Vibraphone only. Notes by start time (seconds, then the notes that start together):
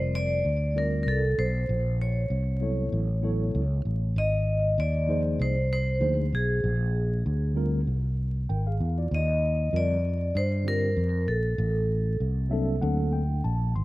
Already playing: C5
0.15 D5
0.78 A#4
1.03 A#4
1.08 A4
1.39 C5
2.02 C#5
4.18 D#5
4.80 D5
5.42 C5
5.73 C5
6.35 G#4
9.14 D#5
9.76 D5
10.37 C5
10.68 A#4
11.28 A4